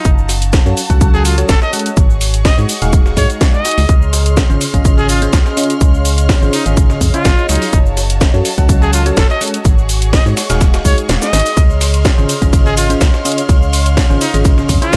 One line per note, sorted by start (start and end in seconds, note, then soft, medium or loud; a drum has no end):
0.00 0.82 C#4 medium
0.00 0.10 D#4 medium
0.00 0.82 F5 medium
0.05 0.60 F#1 loud
0.05 1.95 F#4 medium
0.05 2.74 F#4 medium
0.05 1.95 A5 medium
0.05 kick loud
0.05 closed hi-hat medium
0.05 shaker medium
0.05 shaker soft
0.18 shaker soft
0.29 snare medium
0.29 open hi-hat loud
0.29 shaker medium
0.42 closed hi-hat soft
0.42 closed hi-hat medium
0.42 shaker soft
0.53 kick loud
0.53 snare loud
0.53 shaker medium
0.53 shaker soft
0.58 2.70 C#5 medium
0.66 0.74 F#2 medium
0.66 0.81 F#3 medium
0.66 0.81 C#4 medium
0.66 0.81 F#4 medium
0.66 0.81 A4 medium
0.66 0.81 C#5 medium
0.66 shaker soft
0.77 open hi-hat loud
0.77 shaker medium
0.90 1.44 C#2 medium
0.90 1.35 F#3 medium
0.90 1.35 C#4 medium
0.90 1.35 F#4 medium
0.90 1.35 A4 medium
0.90 1.35 F#5 loud
0.90 kick medium
0.90 closed hi-hat soft
0.90 shaker soft
1.01 kick loud
1.01 closed hi-hat medium
1.01 shaker medium
1.01 shaker soft
1.14 1.23 G#4 loud
1.14 snare soft
1.14 shaker soft
1.25 1.37 F4 medium
1.25 open hi-hat loud
1.25 shaker medium
1.38 1.53 F#3 medium
1.38 1.53 C#4 medium
1.38 1.53 F#4 medium
1.38 1.53 A4 medium
1.38 1.53 C#5 medium
1.38 closed hi-hat medium
1.38 shaker soft
1.49 1.58 F#1 medium
1.49 1.59 A4 loud
1.49 kick loud
1.49 snare loud
1.49 closed hi-hat medium
1.49 shaker medium
1.49 shaker soft
1.62 1.72 D#5 loud
1.62 snare medium
1.62 shaker soft
1.73 1.90 G#3 medium
1.73 1.90 C#4 medium
1.73 1.90 F#4 medium
1.73 1.90 A4 medium
1.73 1.90 F#5 medium
1.73 open hi-hat loud
1.73 shaker medium
1.79 closed hi-hat medium
1.86 closed hi-hat medium
1.86 closed hi-hat soft
1.86 shaker soft
1.97 2.52 G#1 loud
1.97 3.87 F#4 medium
1.97 3.87 G#4 medium
1.97 7.73 G#4 loud
1.97 3.87 C#6 medium
1.97 kick loud
1.97 closed hi-hat medium
1.97 shaker medium
1.97 shaker soft
2.10 shaker soft
2.21 8.50 D#5 medium
2.21 open hi-hat loud
2.21 shaker medium
2.34 closed hi-hat medium
2.34 closed hi-hat soft
2.34 shaker soft
2.45 2.57 D#5 medium
2.45 kick loud
2.45 snare loud
2.45 open hi-hat medium
2.45 shaker soft
2.58 2.66 G#2 medium
2.58 2.73 G#3 medium
2.58 2.73 D#4 medium
2.58 2.73 F#4 medium
2.58 2.73 G#4 medium
2.58 2.73 C#5 medium
2.58 shaker soft
2.69 open hi-hat loud
2.69 shaker medium
2.75 4.53 A#5 medium
2.82 3.19 D#1 medium
2.82 3.15 G#3 medium
2.82 3.15 D#4 medium
2.82 3.15 F#4 medium
2.82 3.15 G#4 medium
2.82 3.15 F5 medium
2.82 closed hi-hat soft
2.82 shaker soft
2.93 kick loud
2.93 closed hi-hat medium
2.93 shaker medium
2.93 shaker soft
3.06 snare soft
3.06 shaker soft
3.17 3.26 G#2 loud
3.17 3.62 G#3 medium
3.17 3.62 D#4 medium
3.17 3.62 F#4 medium
3.17 3.62 G#4 medium
3.17 3.29 C#5 medium
3.17 3.62 F5 medium
3.17 kick medium
3.17 open hi-hat loud
3.17 shaker medium
3.30 closed hi-hat soft
3.30 shaker soft
3.41 kick loud
3.41 snare loud
3.41 closed hi-hat medium
3.41 shaker medium
3.41 shaker soft
3.54 3.94 D#5 loud
3.54 shaker soft
3.65 3.82 D#4 medium
3.65 3.82 F#4 medium
3.65 3.82 G#4 medium
3.65 3.82 D#5 medium
3.65 snare medium
3.65 open hi-hat loud
3.65 shaker medium
3.71 closed hi-hat medium
3.78 3.86 C#2 medium
3.78 open hi-hat medium
3.78 shaker soft
3.89 4.44 C#2 loud
3.89 8.50 C#4 loud
3.89 9.61 C#5 medium
3.89 7.69 C6 medium
3.89 7.69 F6 medium
3.89 kick loud
3.89 closed hi-hat medium
3.89 shaker medium
3.89 shaker soft
4.02 shaker soft
4.13 snare medium
4.13 open hi-hat loud
4.13 shaker medium
4.26 closed hi-hat medium
4.26 closed hi-hat soft
4.26 shaker soft
4.37 kick loud
4.37 snare loud
4.37 shaker medium
4.37 shaker soft
4.50 4.58 G#1 medium
4.50 4.65 C#3 medium
4.50 4.65 C#4 medium
4.50 4.65 F4 medium
4.50 4.65 G#4 medium
4.50 4.65 C5 medium
4.50 shaker soft
4.61 open hi-hat loud
4.61 shaker medium
4.72 5.28 G#1 medium
4.72 5.19 C#3 medium
4.72 5.19 C#4 medium
4.72 5.19 F4 medium
4.72 5.19 G#4 medium
4.72 5.19 D#5 medium
4.72 8.50 F5 medium
4.72 kick medium
4.72 closed hi-hat soft
4.72 shaker soft
4.85 kick loud
4.85 closed hi-hat medium
4.85 shaker medium
4.85 shaker soft
4.98 5.07 G#4 medium
4.98 snare soft
4.98 shaker soft
5.09 5.21 F4 medium
5.09 open hi-hat loud
5.09 shaker medium
5.22 5.38 C#3 medium
5.22 5.38 C#4 medium
5.22 5.38 F4 medium
5.22 5.38 G#4 medium
5.22 5.38 C5 medium
5.22 closed hi-hat medium
5.22 shaker soft
5.33 5.42 C#2 medium
5.33 kick loud
5.33 snare loud
5.33 closed hi-hat medium
5.33 shaker medium
5.33 shaker soft
5.46 snare medium
5.46 shaker soft
5.57 5.74 C#3 medium
5.57 5.74 C#4 medium
5.57 5.74 F4 medium
5.57 5.74 G#4 medium
5.57 5.74 D#5 medium
5.57 open hi-hat loud
5.57 shaker medium
5.63 closed hi-hat medium
5.70 closed hi-hat soft
5.70 closed hi-hat medium
5.70 shaker soft
5.81 6.36 C#2 loud
5.81 kick loud
5.81 closed hi-hat medium
5.81 shaker medium
5.81 shaker soft
5.94 shaker soft
6.05 open hi-hat loud
6.05 shaker medium
6.18 closed hi-hat soft
6.18 shaker soft
6.29 kick loud
6.29 snare loud
6.29 open hi-hat medium
6.29 shaker soft
6.42 6.50 G#1 medium
6.42 6.57 C#3 medium
6.42 6.57 C#4 medium
6.42 6.57 F4 medium
6.42 6.57 G#4 medium
6.42 6.57 C5 medium
6.42 shaker soft
6.53 6.65 D#4 medium
6.53 open hi-hat loud
6.53 shaker medium
6.66 6.96 G#1 medium
6.66 7.11 C#3 medium
6.66 7.11 C#4 medium
6.66 7.11 F4 medium
6.66 7.11 G#4 medium
6.66 7.11 D#5 medium
6.66 closed hi-hat medium
6.66 shaker soft
6.77 kick loud
6.77 closed hi-hat medium
6.77 shaker medium
6.77 shaker soft
6.90 snare soft
6.90 shaker soft
7.01 7.10 F2 loud
7.01 kick medium
7.01 open hi-hat loud
7.01 shaker medium
7.14 7.29 C#3 medium
7.14 7.29 C#4 medium
7.14 7.47 F4 loud
7.14 7.29 F4 medium
7.14 7.29 G#4 medium
7.14 7.29 C5 medium
7.14 closed hi-hat medium
7.14 shaker soft
7.25 7.34 G#1 loud
7.25 kick loud
7.25 snare loud
7.25 closed hi-hat medium
7.25 shaker medium
7.25 shaker soft
7.38 shaker soft
7.49 7.58 C#2 medium
7.49 7.66 F#3 medium
7.49 7.66 C#4 medium
7.49 7.78 D#4 medium
7.49 7.66 F4 medium
7.49 7.66 G#4 medium
7.49 7.66 D#5 medium
7.49 snare medium
7.49 open hi-hat loud
7.49 shaker medium
7.55 closed hi-hat medium
7.62 open hi-hat medium
7.62 shaker soft
7.73 8.28 F#1 loud
7.73 10.42 F#4 medium
7.73 11.53 F#4 medium
7.73 9.63 A5 loud
7.73 kick loud
7.73 closed hi-hat medium
7.73 shaker medium
7.73 shaker soft
7.86 shaker soft
7.97 snare medium
7.97 open hi-hat medium
7.97 shaker medium
8.07 10.42 C#5 medium
8.07 closed hi-hat medium
8.07 closed hi-hat soft
8.07 shaker soft
8.21 kick loud
8.21 snare loud
8.21 shaker medium
8.21 shaker soft
8.34 8.42 F#2 loud
8.34 8.49 F#3 medium
8.34 8.49 C#4 medium
8.34 8.49 F#4 medium
8.34 8.49 A4 medium
8.34 8.49 C#5 medium
8.34 shaker soft
8.45 open hi-hat loud
8.45 shaker medium
8.58 9.12 C#2 medium
8.58 9.03 F#3 medium
8.58 9.03 C#4 medium
8.58 9.03 F#4 medium
8.58 9.03 A4 medium
8.58 9.03 F#5 medium
8.58 kick medium
8.58 closed hi-hat medium
8.58 shaker soft
8.69 kick loud
8.69 closed hi-hat medium
8.69 shaker medium
8.69 shaker soft
8.82 8.91 G#4 loud
8.82 snare soft
8.82 shaker soft
8.93 9.05 F4 medium
8.93 open hi-hat loud
8.93 shaker medium
9.06 9.21 F#3 medium
9.06 9.21 C#4 medium
9.06 9.21 F#4 medium
9.06 9.21 A4 medium
9.06 9.21 C#5 medium
9.06 closed hi-hat medium
9.06 shaker soft
9.17 9.26 F#1 medium
9.17 9.27 A4 loud
9.17 kick loud
9.17 snare loud
9.17 closed hi-hat medium
9.17 shaker medium
9.17 shaker soft
9.30 9.40 D#5 medium
9.30 snare medium
9.30 shaker soft
9.41 9.58 G#3 medium
9.41 9.58 C#4 medium
9.41 9.58 F#4 medium
9.41 9.58 A4 medium
9.41 9.58 F#5 medium
9.41 open hi-hat loud
9.41 shaker medium
9.48 closed hi-hat medium
9.54 closed hi-hat medium
9.54 closed hi-hat soft
9.54 shaker soft
9.65 10.20 G#1 loud
9.65 11.55 G#4 medium
9.65 14.97 G#4 medium
9.65 11.55 C#6 medium
9.65 kick loud
9.65 closed hi-hat medium
9.65 shaker medium
9.65 shaker soft
9.78 shaker soft
9.89 open hi-hat loud
9.89 shaker medium
10.02 closed hi-hat soft
10.02 closed hi-hat medium
10.02 shaker soft
10.12 14.97 D#5 medium
10.12 10.25 D#5 medium
10.12 kick loud
10.12 snare loud
10.12 open hi-hat medium
10.12 shaker soft
10.26 10.34 G#2 loud
10.26 10.41 G#3 medium
10.26 10.41 D#4 medium
10.26 10.41 F#4 medium
10.26 10.41 G#4 medium
10.26 10.41 C#5 medium
10.26 shaker soft
10.37 snare loud
10.37 open hi-hat loud
10.37 shaker medium
10.50 10.80 D#1 medium
10.50 10.83 G#3 medium
10.50 10.83 D#4 medium
10.50 10.83 F#4 medium
10.50 10.83 G#4 medium
10.50 10.83 F5 medium
10.50 12.49 A#5 medium
10.50 snare loud
10.50 closed hi-hat medium
10.50 shaker medium
10.50 shaker soft
10.61 kick loud
10.61 snare loud
10.61 closed hi-hat medium
10.61 shaker medium
10.61 shaker soft
10.74 snare loud
10.74 shaker medium
10.74 shaker soft
10.85 10.94 C#2 loud
10.85 11.30 G#3 medium
10.85 11.30 D#4 medium
10.85 11.30 F#4 medium
10.85 11.30 G#4 medium
10.85 10.97 C#5 medium
10.85 11.30 F5 medium
10.85 kick medium
10.85 open hi-hat loud
10.85 shaker medium
10.98 closed hi-hat medium
10.98 shaker soft
11.09 11.18 D#1 loud
11.09 snare soft
11.09 snare loud
11.09 closed hi-hat medium
11.09 shaker medium
11.09 shaker soft
11.22 11.62 D#5 loud
11.22 snare medium
11.22 shaker medium
11.22 shaker soft
11.33 11.42 G#1 medium
11.33 11.50 D#4 medium
11.33 11.50 F#4 medium
11.33 11.50 G#4 medium
11.33 11.50 D#5 medium
11.33 snare medium
11.33 open hi-hat loud
11.33 shaker medium
11.39 closed hi-hat medium
11.46 open hi-hat medium
11.46 shaker medium
11.46 shaker soft
11.57 12.12 C#2 loud
11.57 14.97 C#4 medium
11.57 14.97 C#5 medium
11.57 14.97 C6 medium
11.57 14.97 F6 medium
11.57 kick loud
11.57 closed hi-hat medium
11.57 ride medium
11.57 shaker medium
11.57 shaker soft
11.70 shaker soft
11.77 14.97 F5 medium
11.77 snare medium
11.77 open hi-hat loud
11.77 ride medium
11.77 shaker medium
11.81 shaker medium
11.94 closed hi-hat medium
11.94 closed hi-hat soft
11.94 shaker soft
12.05 kick loud
12.05 snare loud
12.05 ride medium
12.05 shaker medium
12.05 shaker soft
12.18 12.26 G#1 medium
12.18 12.33 C#3 medium
12.18 12.33 C#4 medium
12.18 12.33 F4 medium
12.18 12.33 G#4 medium
12.18 12.33 C5 medium
12.18 shaker soft
12.29 open hi-hat loud
12.29 ride medium
12.29 shaker medium
12.42 12.96 G#1 medium
12.42 12.87 C#3 medium
12.42 12.87 C#4 medium
12.42 12.87 F4 medium
12.42 12.87 G#4 medium
12.42 12.87 D#5 medium
12.42 kick medium
12.42 closed hi-hat medium
12.42 shaker soft
12.53 kick loud
12.53 closed hi-hat medium
12.53 ride medium
12.53 shaker loud
12.53 shaker soft
12.66 12.75 G#4 medium
12.66 snare soft
12.66 shaker soft
12.77 12.89 F4 medium
12.77 open hi-hat loud
12.77 ride medium
12.77 shaker medium
12.90 13.05 C#3 medium
12.90 13.05 C#4 medium
12.90 13.05 F4 medium
12.90 13.05 G#4 medium
12.90 13.05 C5 medium
12.90 closed hi-hat medium
12.90 shaker soft
13.01 13.10 C#2 medium
13.01 kick loud
13.01 snare loud
13.01 closed hi-hat medium
13.01 ride medium
13.01 shaker medium
13.01 shaker soft
13.14 snare medium
13.14 shaker soft
13.25 13.42 C#3 medium
13.25 13.42 C#4 medium
13.25 13.42 F4 medium
13.25 13.42 G#4 medium
13.25 13.42 D#5 medium
13.25 open hi-hat loud
13.25 ride medium
13.25 shaker medium
13.32 closed hi-hat medium
13.38 closed hi-hat soft
13.38 closed hi-hat medium
13.38 shaker soft
13.49 14.04 C#2 loud
13.49 kick loud
13.49 closed hi-hat medium
13.49 ride medium
13.49 shaker medium
13.49 shaker soft
13.62 shaker soft
13.73 open hi-hat loud
13.73 ride medium
13.73 shaker medium
13.86 closed hi-hat soft
13.86 closed hi-hat medium
13.86 shaker soft
13.97 kick loud
13.97 snare loud
13.97 open hi-hat medium
13.97 ride medium
13.97 shaker soft
14.10 14.18 G#1 medium
14.10 14.25 C#3 medium
14.10 14.25 C#4 medium
14.10 14.25 F4 medium
14.10 14.25 G#4 medium
14.10 14.25 C5 medium
14.10 shaker soft
14.21 14.33 D#4 medium
14.21 open hi-hat loud
14.21 ride medium
14.21 shaker medium
14.34 14.64 G#1 medium
14.34 14.79 C#3 medium
14.34 14.79 C#4 medium
14.34 14.79 F4 medium
14.34 14.79 G#4 medium
14.34 14.79 D#5 loud
14.34 closed hi-hat medium
14.34 shaker soft
14.45 kick loud
14.45 closed hi-hat medium
14.45 ride medium
14.45 shaker medium
14.45 shaker soft
14.58 snare soft
14.58 shaker soft
14.69 14.78 F2 loud
14.69 kick medium
14.69 open hi-hat loud
14.69 ride medium
14.69 shaker medium
14.82 14.97 C#3 medium
14.82 14.97 C#4 medium
14.82 14.97 F4 medium
14.82 14.97 F4 loud
14.82 14.97 G#4 medium
14.82 14.97 C5 medium
14.82 closed hi-hat medium
14.82 shaker soft
14.93 14.97 G#1 loud
14.93 kick loud
14.93 snare loud
14.93 closed hi-hat medium
14.93 ride medium
14.93 shaker medium
14.93 shaker soft